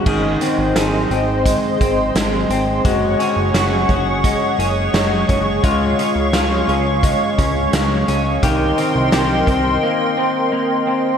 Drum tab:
CC |x-------|--------|--------|--------|
HH |-xxxxxxx|xxxxxxxx|xxxxxxxx|xxxx----|
SD |--o---o-|--o---o-|--o---o-|--o-----|
BD |o---oo--|o--oo--o|o---oo--|o--o----|